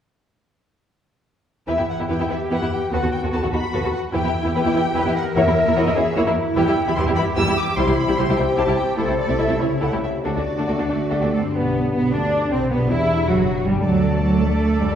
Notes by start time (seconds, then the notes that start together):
1.67 E2 E3 B3 E4 G4 B4 E5
1.77 E2 B3 E4 G4
1.89 B3 F#5
1.98 E2 B3 E4 G4
2.08 E2 B3 E4 G4 B4 G5
2.19 E2 B3 E4 G4
2.29 E2 B3 E4 G4 E5
2.50 E2 B3 E4 G4 B4 F#5
2.61 E2 B3 E4 G4
2.72 E4 G5
2.92 D#2 D#3 B3 F#4 A4 B4 F#5
3.02 D#2 B3 F#4 A4
3.12 B3 G5
3.23 D#2 B3 F#4 A4
3.32 D#2 B3 F#4 A4 B4 A5
3.42 D#2 B3 F#4 A4
3.53 D#2 B3 D#4 F#4 B4 B5
3.73 D#2 B3 F#4 A4 B4
3.83 D#2 B3 F#4 A4
3.93 B3 F#5
4.12 E2 E3 B3 E4 G4 B4 G5
4.23 E2 B3 E4 G4
4.34 E4
4.44 E2 B3 E4 G4
4.54 E2 B3 E4 G4 B4 G5
4.64 E2 B3 E4 G4
4.74 E2 B3 E4 G4 E5
4.94 E2 B3 E4 G4 B4
5.05 E2 B3 E4 G4
5.15 E4 A#4 F#5
5.35 E2 E3 A#3 E4 F#4 C#5 E5
5.46 E2 A#3 E4 A#4
5.55 E4
5.65 E2 A#3 E4 A#4
5.75 E2 A#3 E4 F#4 A#4 C#5 D#5
5.85 E2 A#3 E4 A#4
5.95 E2 A#3 C#4 E4 F#4 G#4 E5
6.15 E2 A#3 E4 F#4 C#5
6.26 E2 A#3 E4 A#4
6.34 E4
6.54 E2 E3 G3 E4 G4 B4 G5
6.66 E2 G3 E4 G4
6.75 E4
6.86 E2 G3 E4 G4 B5
6.95 E2 G3 E4 G4 B4 C6
7.06 E2 G3 E4 G4
7.15 E2 G3 B3 E4 G4 E5 B5
7.36 E2 G3 E4 G4 B4 E6
7.47 E2 G3 E4 G4
7.56 E4 D6
7.76 C2 C3 G3 E4 G4 C5 C6
7.87 C2 G3 E4 G4
7.96 C4 B5
8.07 C2 G3 E4 G4
8.16 C2 G3 E4 G4 C5 C6
8.28 C2 G3 E4 G4
8.36 C2 G3 C4 E4 G4 C5 G5
8.57 C2 G3 E4 G4 C5 A5
8.66 C2 G3 E4 G4
8.77 C4 G5
8.97 C2 C3 A3 E4 A4 C5
9.07 C2 A3 C4 E4
9.19 C4 D5
9.27 C2 A3 C4 E4
9.38 C2 A3 E4 A4 E5
9.48 C2 A3 C4 E4
9.59 C#2 C#3 A3 C#4 E4 C#5
9.81 C#2 A3 E4 G4 A4 F#5
9.92 C#2 A3 E4 G4
10.03 E4 G4 E5
10.24 D2 D3 A3 D4 F#4 A4 D5
10.35 D2 A3 D4 F#4
10.48 D4
10.58 D2 A3 D4 F#4
10.67 D2 A3 D4 F#4 A4
10.78 D2 A3 D4 F#4
10.88 D2 A3 D4 F#4 D5
11.10 A3 D4 F#4 G4 A4
11.14 D2
11.21 D2 A3 D4 F#4
11.33 G2 C4 D4 A4
11.41 B3
11.46 D4
11.50 B3 G4
11.54 B1 B3
11.93 B1 B3
12.12 D2 D4
12.51 C2 B2 C4
12.58 B3
12.62 D4
12.67 B3 G4
12.71 B1 B3
12.89 E2 E4
13.28 F#1 F#3 F#4
13.66 G1 D3 G3
13.71 A3
13.76 D4
13.80 A4
13.85 D2 F#3 A4 D5 A5
14.24 F#3
14.42 A3
14.80 F#2 G3
14.85 A3
14.89 D4